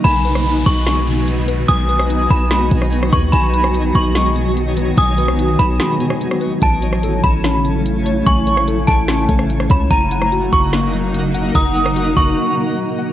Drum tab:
HH |x-x-x-x-x-x-x-x-|x-x-x-x-x-x-x-x-|x-x-x-x-x-x-x-x-|x-x-x-x-x-x-x-x-|
SD |---r----o-------|---r----o--r-r--|---r----o-------|---r----o--r-r--|
BD |o-----o---------|o-----o---o---o-|o-----o---------|o-----o---------|

HH |x-x-x-x-x-x-x-x-|x-x-x-x-x-x-x-x-|x-x-x-x-x-x-x-x-|x-x-x-x---------|
SD |---r----o-------|---r----o--r-r--|---r----o-------|---r------------|
BD |o-----o---------|o-----o---o---o-|o-----o---------|o-----o---------|